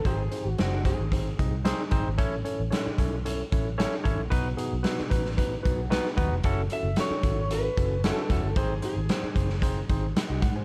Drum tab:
HH |x-x-x-x-x-x-x-x-|x-x-x-x-x-x-x-x-|x-x-x-x-x-x-x-x-|x-x-x-x-x-x-x-x-|
SD |----o-------o---|----o-------o---|----oo-o----oo--|----o-------o---|
BD |o-----o-o-o---o-|o-----o---o---o-|o-----o-o-o---o-|o-----o---o---o-|

HH |x-x-x-x-x-x-x-x-|
SD |----o--o----o---|
BD |o-----o-o-o---o-|